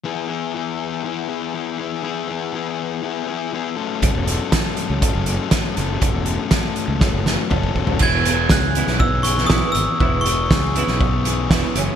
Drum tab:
CC |----------------|----------------|----------------|----------------|
HH |----------------|----------------|x-x-x-x-x-x-x-x-|x-x-x-x---------|
SD |----------------|----------------|----o-------o-o-|----o---o-o-----|
T2 |----------------|----------------|----------------|------------o---|
FT |----------------|----------------|----------------|---------------o|
BD |----------------|----------------|o---o---o---o---|o---o---o---ooo-|

CC |x---------------|----------------|
HH |--x---x---x---x-|--x---x---x---x-|
SD |----o--o---oo---|----o--o----o---|
T2 |----------------|----------------|
FT |----------------|----------------|
BD |o---o---o---o---|o---o---o---o---|